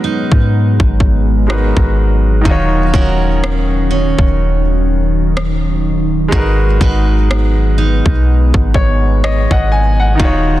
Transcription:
0.00 10.60 F#3 medium
0.00 1.43 G#3 medium
0.00 2.42 G#3 medium
0.00 2.46 G#3 medium
0.00 2.41 B3 medium
0.00 1.44 D#4 medium
0.00 2.93 D#4 medium
0.00 1.45 F#4 medium
0.00 2.58 F#4 medium
0.00 1.46 A#4 medium
0.00 1.47 B4 medium
0.00 2.57 B4 medium
0.32 0.78 G#2 loud
0.32 kick medium
0.80 1.73 G#1 medium
0.80 kick medium
1.00 kick medium
1.47 2.44 G#3 medium
1.47 2.42 D#4 soft
1.47 2.46 F#4 soft
1.47 2.46 A#4 soft
1.47 cross-stick loud
1.52 2.47 B4 medium
1.77 2.43 G#1 loud
1.77 kick medium
2.41 6.26 D#3 medium
2.41 6.28 D#4 medium
2.45 6.29 D#3 medium
2.45 6.33 D#3 medium
2.45 4.37 C#4 medium
2.45 6.29 F4 medium
2.45 6.30 F#4 medium
2.45 kick loud
2.51 6.31 C#5 medium
2.94 4.15 D#1 medium
2.94 3.89 C#4 medium
2.94 6.45 F#4 medium
2.94 6.44 A#4 medium
2.94 kick medium
3.44 cross-stick loud
3.91 6.44 C#4 medium
4.19 6.28 D#1 loud
4.19 kick medium
4.39 6.30 D#4 medium
5.37 cross-stick loud
6.28 6.79 G#1 loud
6.28 10.14 G#3 medium
6.28 10.16 G#3 medium
6.28 10.16 B3 medium
6.28 10.15 D#4 medium
6.28 kick loud
6.33 10.20 G#3 medium
6.33 10.16 F#4 medium
6.33 10.17 A#4 medium
6.38 10.19 B4 medium
6.81 8.02 G#1 loud
6.81 7.77 D#4 medium
6.81 10.32 F#4 medium
6.81 10.32 B4 medium
6.81 kick medium
7.31 cross-stick loud
7.78 10.60 D#4 medium
8.06 8.52 B1 loud
8.06 kick medium
8.54 9.47 G#1 medium
8.54 kick medium
8.74 9.20 C#5 medium
8.74 kick medium
9.24 9.50 C#5 medium
9.24 9.49 D#5 medium
9.24 cross-stick loud
9.51 10.17 G#1 loud
9.51 9.97 D#5 medium
9.51 9.70 F#5 medium
9.51 kick medium
9.72 10.17 G#5 medium
10.00 10.45 F#5 medium
10.15 10.60 D#3 medium
10.15 10.60 D#4 medium
10.20 10.60 D#3 medium
10.20 10.60 C#4 medium
10.20 10.60 F4 medium
10.20 10.60 F#4 medium
10.20 kick loud
10.25 10.60 C#5 medium

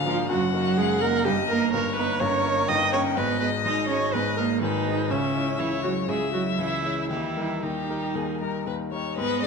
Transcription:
0.00 0.33 G#1 medium
0.00 0.33 G#2 medium
0.00 0.06 A#3 soft
0.00 0.07 D4 medium
0.00 0.07 A#4 medium
0.00 0.29 F5 medium
0.06 0.30 F3 medium
0.06 0.28 A#3 medium
0.06 0.28 D4 soft
0.06 0.29 F4 medium
0.06 0.28 A#4 medium
0.29 0.53 F#1 medium
0.29 0.53 F#2 medium
0.29 0.54 F#3 medium
0.29 0.53 F#4 medium
0.29 1.24 F#5 medium
0.53 0.80 F#3 medium
0.53 0.75 A#3 soft
0.53 0.75 D#4 soft
0.53 0.79 F#4 medium
0.53 0.76 A#4 soft
0.77 1.01 F#1 medium
0.77 1.01 F#2 medium
0.77 1.02 G#3 medium
0.77 1.03 G#4 medium
1.01 1.24 A#3 soft
1.01 1.26 A#3 medium
1.01 1.24 D#4 soft
1.01 1.26 A#4 loud
1.01 1.24 A#4 medium
1.25 1.49 G1 medium
1.25 1.49 G2 medium
1.25 1.34 G3 medium
1.25 1.48 G4 medium
1.25 1.72 D#5 medium
1.49 1.71 A#3 soft
1.49 1.73 A#3 medium
1.49 1.71 D#4 soft
1.49 1.72 A#4 medium
1.73 1.97 G1 medium
1.73 1.97 G2 medium
1.73 1.83 A#3 medium
1.73 1.96 A#4 medium
1.73 2.23 C#5 medium
1.96 2.19 A#3 soft
1.96 2.06 B3 medium
1.96 2.19 D#4 soft
1.96 2.19 A#4 medium
1.96 2.22 B4 medium
2.20 2.44 G1 medium
2.20 2.44 G2 medium
2.20 2.68 C#4 medium
2.20 2.69 A#4 medium
2.20 2.70 C#5 medium
2.44 2.66 A#3 soft
2.44 2.67 D#4 soft
2.44 2.67 A#4 soft
2.69 2.92 G1 medium
2.69 2.92 G2 medium
2.69 2.77 D#4 medium
2.69 2.92 D#5 loud
2.69 3.18 G5 medium
2.92 3.15 A#3 soft
2.92 3.18 C#4 medium
2.92 3.15 D#4 soft
2.92 3.15 A#4 medium
2.92 3.00 C#5 medium
3.17 3.41 G#1 medium
3.17 3.41 G#2 medium
3.17 3.40 B3 medium
3.17 3.40 B4 medium
3.17 4.13 D#5 medium
3.40 3.63 G#3 soft
3.40 3.48 B3 medium
3.40 3.64 D#4 soft
3.40 3.48 B4 medium
3.40 3.64 D#5 medium
3.65 3.89 G#1 medium
3.65 3.89 G#2 medium
3.65 3.88 D#4 medium
3.65 3.89 D#5 medium
3.88 4.12 G#3 soft
3.88 3.96 C#4 medium
3.88 4.12 D#4 medium
3.88 4.15 C#5 medium
3.88 4.12 D#5 medium
4.13 4.38 G#1 medium
4.13 4.38 G#2 medium
4.13 4.22 B3 medium
4.13 4.37 B4 medium
4.13 4.62 D#5 medium
4.37 4.61 G#3 soft
4.37 4.63 A#3 medium
4.37 4.61 D#4 soft
4.37 4.45 A#4 medium
4.37 4.61 D#5 soft
4.62 4.86 G#1 medium
4.62 4.86 G#2 medium
4.62 5.10 D#3 medium
4.62 5.12 D#4 medium
4.62 5.12 B4 medium
4.87 5.09 G#3 soft
4.87 5.09 D#4 soft
4.87 5.09 D#5 soft
5.10 5.34 C#2 medium
5.10 5.34 C#3 soft
5.10 5.59 C#3 medium
5.10 5.60 C#4 medium
5.10 5.61 E5 medium
5.35 5.57 G#3 soft
5.35 5.57 E4 soft
5.35 5.58 C#5 soft
5.59 5.83 C#2 soft
5.59 5.83 C#3 soft
5.59 5.67 E3 medium
5.59 5.83 E4 medium
5.59 6.10 C#5 medium
5.83 6.08 F#3 medium
5.83 6.06 G#3 soft
5.83 6.06 E4 soft
5.83 5.91 F#4 medium
5.83 6.06 C#5 soft
6.08 6.32 C#2 soft
6.08 6.33 C#3 medium
6.08 6.17 G#3 medium
6.08 6.32 G#4 medium
6.08 7.10 E5 medium
6.33 6.60 F#3 medium
6.33 6.56 G#3 soft
6.33 6.57 E4 soft
6.33 6.41 F#4 medium
6.33 6.57 C#5 soft
6.58 6.84 C#2 soft
6.58 6.84 C#3 soft
6.58 7.10 E3 medium
6.58 7.09 E4 medium
6.85 7.08 G#3 soft
6.85 7.09 E4 soft
6.85 7.09 C#5 soft
7.10 7.36 D#2 soft
7.10 7.36 D#3 soft
7.10 7.65 E3 medium
7.10 7.65 E4 medium
7.10 7.57 G4 soft
7.36 7.60 G3 soft
7.36 7.61 D#4 soft
7.36 7.61 A#4 soft
7.63 7.89 D#2 soft
7.63 7.89 D#3 soft
7.63 8.67 D#3 soft
7.63 8.67 D#4 medium
7.63 8.16 G4 medium
7.89 8.13 G3 soft
7.89 8.13 D#4 soft
7.89 8.13 A#4 soft
8.15 8.40 D#2 soft
8.15 8.40 D#3 soft
8.15 8.40 G#4 medium
8.41 8.64 G3 soft
8.41 8.64 D#4 soft
8.41 8.66 A#4 medium
8.41 8.65 A#4 soft
8.67 8.92 D#2 soft
8.67 8.92 D#3 soft
8.67 8.75 B4 medium
8.92 9.15 G3 soft
8.92 9.15 D#4 soft
8.92 9.16 A#4 soft
8.92 9.17 C#5 medium
9.17 9.47 G#2 medium
9.17 9.45 B3 medium
9.17 9.41 B4 medium
9.17 9.47 D#5 medium
9.42 9.47 G#3 medium
9.42 9.47 D#4 medium
9.42 9.47 D#5 medium

